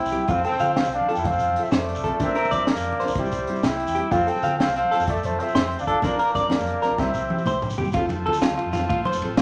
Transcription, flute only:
0.00 0.32 G5 loud
0.30 0.44 F5 loud
0.45 0.77 G5 loud
0.76 0.92 F5 loud
0.92 1.13 F5 medium
1.13 1.26 G5 medium
1.25 1.64 F5 medium
1.63 1.72 E5 medium
1.70 2.19 D5 medium
2.21 2.65 E5 medium
2.70 3.14 D5 medium
3.16 3.66 C5 medium
3.64 4.13 G5 loud
4.11 4.30 F5 loud
4.29 4.60 G5 loud
4.61 4.75 F5 medium
4.77 5.06 F5 loud
5.08 5.27 D5 medium
5.25 5.43 C5 medium
5.41 5.79 E5 medium
5.80 5.87 F5 medium
5.89 6.03 F5 medium
6.04 6.30 D5 medium
6.51 7.01 D5 medium
6.99 7.63 E5 medium

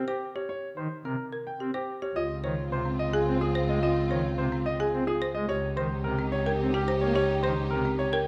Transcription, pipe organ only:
0.77 0.87 D#3 soft
1.05 1.15 C3 soft
1.60 1.71 C4 soft
2.44 2.54 D#3 medium
2.71 2.82 C3 medium
3.27 3.37 C4 medium
3.69 3.79 G#3 medium
4.10 4.21 D#3 medium
4.38 4.48 C3 medium
4.93 5.04 C4 medium
5.35 5.46 G#3 medium
5.77 5.87 D#3 medium
6.05 6.15 C3 medium
6.61 6.71 C4 medium
7.02 7.13 A#3 medium
7.44 7.54 D#3 medium
7.71 7.82 C3 medium

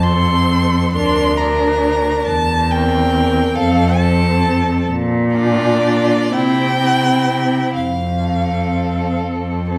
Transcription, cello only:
0.00 0.79 F2 medium
0.94 2.12 D2 medium
2.28 3.40 E2 medium
3.56 4.72 F2 medium
4.89 6.15 A#2 medium
6.32 7.59 C3 medium
7.75 9.04 F2 medium
9.22 9.78 F2 soft

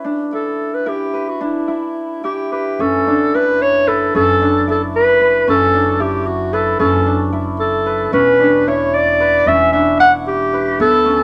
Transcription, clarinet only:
0.34 0.76 A4 medium
0.74 0.90 B4 medium
0.89 1.30 G4 medium
1.29 1.42 F#4 medium
1.43 2.21 E4 medium
2.25 2.50 G4 medium
2.53 2.82 G4 medium
2.81 3.37 A4 medium
3.35 3.63 B4 medium
3.62 3.90 C#5 medium
3.88 4.15 A4 medium
4.16 4.65 A4 loud
4.71 4.82 A4 medium
4.96 5.45 B4 medium
5.50 6.03 A4 loud
6.01 6.28 G4 medium
6.26 6.55 F#4 medium
6.53 6.80 A4 medium
6.80 7.29 A4 medium
7.60 8.10 A4 medium
8.14 8.69 B4 medium
8.68 8.96 C#5 medium
8.95 9.49 D5 medium
9.48 9.72 E5 loud
9.73 9.99 E5 medium
10.00 10.12 F#5 medium
10.28 10.77 G4 medium
10.81 11.23 A4 loud

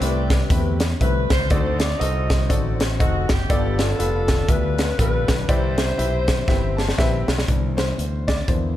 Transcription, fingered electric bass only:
0.01 0.43 C2 medium
0.50 0.93 E2 loud
1.01 1.26 C2 medium
1.30 1.48 C#2 loud
1.50 1.93 D2 loud
2.01 2.50 C2 loud
2.50 3.02 A1 loud
3.01 3.25 F1 medium
3.30 3.47 F#1 medium
3.50 3.92 G1 loud
4.00 4.42 F1 medium
4.48 4.91 D2 medium
4.99 5.24 A#1 loud
5.29 5.46 B1 medium
5.49 5.91 C2 loud
5.99 6.41 B1 medium
6.48 6.91 G1 medium
6.99 7.24 A#1 medium
7.28 7.46 B1 medium
7.49 7.91 C2 loud
7.98 8.41 D2 medium
8.48 8.74 E2 medium

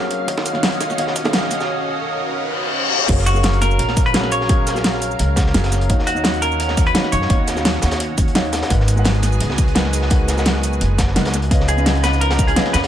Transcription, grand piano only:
0.00 0.30 F#3 medium
0.00 0.30 C#4 medium
0.00 0.30 G#4 medium
0.00 0.30 A#4 medium
0.00 0.28 F5 medium
0.27 0.52 D#3 medium
0.27 0.52 D#4 medium
0.27 0.53 F#4 medium
0.27 0.53 C#5 medium
0.27 0.53 F5 medium
0.53 0.96 D#3 medium
0.53 0.96 D#4 medium
0.53 0.97 F#4 medium
0.53 0.97 C#5 medium
0.53 0.98 F5 medium
0.98 1.22 D#3 medium
0.98 1.23 D#4 medium
0.98 1.23 F#4 medium
0.98 1.23 C#5 medium
0.98 1.23 F5 medium
1.24 1.67 D#3 medium
1.24 1.67 D#4 medium
1.24 1.67 F#4 medium
1.24 1.68 C#5 medium
1.24 1.68 F5 medium
3.08 3.32 F#3 medium
3.08 3.33 C#4 medium
3.08 3.33 G#4 medium
3.08 3.34 A#4 medium
3.08 3.34 F5 medium
3.34 4.11 F#3 medium
3.34 4.12 C#4 medium
3.34 4.12 G#4 medium
3.34 4.13 A#4 medium
3.34 4.13 F5 medium
4.13 4.22 F#3 medium
4.13 4.22 C#4 medium
4.13 4.22 G#4 medium
4.13 4.22 A#4 medium
4.13 4.23 F5 medium
4.48 4.73 F#3 medium
4.48 4.74 C#4 medium
4.48 4.74 G#4 medium
4.48 4.74 A#4 medium
4.48 4.74 F5 medium
4.75 5.52 F#3 medium
4.75 5.52 C#4 medium
4.75 5.53 G#4 medium
4.75 5.53 A#4 medium
4.75 5.53 F5 medium
5.54 5.62 F#3 medium
5.54 5.63 C#4 medium
5.54 5.63 G#4 medium
5.54 5.63 A#4 medium
5.54 5.63 F5 loud
5.89 6.13 D#3 medium
5.89 6.14 D#4 medium
5.89 6.14 F#4 medium
5.89 6.14 C#5 medium
5.89 6.15 F5 medium
6.15 6.92 D#3 medium
6.15 6.92 D#4 medium
6.15 6.93 F#4 medium
6.15 6.93 C#5 medium
6.15 6.94 F5 medium
6.94 7.03 D#3 medium
6.94 7.03 D#4 medium
6.94 7.03 F#4 medium
6.94 7.03 C#5 medium
6.94 7.03 F5 loud
7.29 7.53 D#3 medium
7.29 7.54 D#4 medium
7.29 7.55 F#4 medium
7.29 7.55 C#5 medium
7.29 7.55 F5 medium
7.55 8.32 D#3 medium
7.55 8.33 D#4 medium
7.55 8.33 F#4 medium
7.55 8.33 C#5 medium
7.55 8.34 F5 medium
8.34 8.43 D#3 medium
8.34 8.43 D#4 medium
8.34 8.43 F#4 medium
8.34 8.43 C#5 medium
8.34 8.44 F5 medium
8.70 8.94 G#3 medium
8.70 8.95 D#4 medium
8.70 8.95 A#4 medium
8.70 8.95 B4 medium
8.70 8.95 F#5 medium
8.96 9.73 G#3 medium
8.96 9.73 D#4 medium
8.96 9.74 A#4 medium
8.96 9.74 B4 medium
8.96 9.75 F#5 medium
9.75 9.83 G#3 medium
9.75 9.84 D#4 medium
9.75 9.84 A#4 medium
9.75 9.84 B4 medium
9.75 9.84 F#5 medium
10.10 10.35 G#3 medium
10.10 10.35 D#4 medium
10.10 10.35 A#4 medium
10.10 10.36 B4 medium
10.10 10.36 F#5 medium
10.36 11.13 G#3 medium
10.36 11.14 D#4 medium
10.36 11.14 A#4 medium
10.36 11.14 B4 medium
10.36 11.15 F#5 medium
11.15 11.24 G#3 medium
11.15 11.24 D#4 medium
11.15 11.24 A#4 medium
11.15 11.24 B4 medium
11.15 11.24 F#5 loud
11.50 11.75 C#3 medium
11.50 11.76 C#4 medium
11.50 11.76 B4 medium
11.50 11.76 D#5 medium
11.50 11.76 F5 medium
11.76 12.54 C#3 medium
11.76 12.54 C#4 medium
11.76 12.54 B4 medium
11.76 12.55 D#5 medium
11.76 12.55 F5 medium
12.55 12.64 C#3 medium
12.55 12.64 C#4 medium
12.55 12.64 B4 medium
12.55 12.65 D#5 medium
12.55 12.65 F5 loud

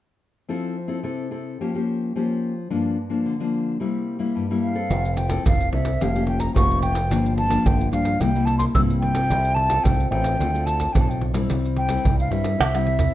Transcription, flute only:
4.61 5.18 F5 medium
5.17 5.45 G5 medium
5.47 5.72 F5 medium
5.73 6.04 E5 medium
6.02 6.27 F5 medium
6.28 6.41 G5 medium
6.40 6.55 A#5 medium
6.56 6.81 C#6 medium
6.82 7.34 G5 medium
7.38 7.68 A5 medium
7.67 7.92 G5 medium
7.92 8.22 F5 medium
8.21 8.47 G5 medium
8.46 8.58 A5 medium
8.58 8.64 C6 medium
8.75 8.81 E6 medium
9.00 9.56 G5 loud
9.55 9.85 A5 loud
9.84 10.10 G5 medium
10.11 10.68 G5 loud
10.66 10.94 A5 medium
10.93 11.02 G5 medium
11.01 11.11 A5 medium
11.09 11.23 G5 medium
11.78 12.16 G5 medium
12.20 12.33 F5 medium
12.31 13.14 E5 medium

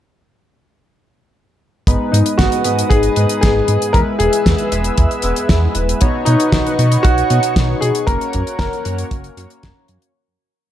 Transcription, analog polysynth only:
1.87 2.62 G#2 medium
1.87 2.62 G#3 medium
1.87 2.62 B3 medium
1.87 2.62 D#4 medium
1.87 2.62 B4 loud
2.65 3.14 G#2 medium
2.65 3.14 G#3 medium
2.65 3.14 B3 medium
2.65 3.14 D#4 medium
2.65 3.14 B4 medium
3.17 3.91 G#2 medium
3.17 3.91 G#3 medium
3.17 3.91 B3 medium
3.17 3.91 D#4 medium
3.17 3.91 B4 loud
3.94 4.69 G#3 medium
3.94 4.69 B3 medium
3.94 4.69 E4 medium
3.94 4.69 B4 loud
4.72 5.20 G#3 medium
4.72 5.20 B3 medium
4.72 5.20 E4 medium
4.72 5.20 B4 loud
5.23 5.98 G#3 medium
5.23 5.98 B3 medium
5.23 5.98 E4 medium
5.23 5.98 B4 loud
6.01 6.76 B2 medium
6.01 6.76 B3 medium
6.01 6.76 D#4 medium
6.01 6.76 F#4 medium
6.01 6.76 C#5 loud
6.79 7.27 B2 medium
6.79 7.27 B3 medium
6.79 7.27 D#4 medium
6.79 7.27 F#4 medium
6.79 7.27 C#5 loud
7.30 8.05 B2 medium
7.30 8.05 B3 medium
7.30 8.05 D#4 medium
7.30 8.05 F#4 medium
7.30 8.05 C#5 loud
8.08 8.83 A#3 medium
8.08 8.82 C#4 medium
8.08 8.83 F#4 medium
8.08 8.83 C#5 loud
8.86 9.34 A#3 medium
8.86 9.34 C#4 medium
8.86 9.34 F#4 medium
8.86 9.34 C#5 loud
9.37 10.12 A#3 medium
9.37 10.12 C#4 medium
9.37 10.12 F#4 medium
9.37 10.12 C#5 loud

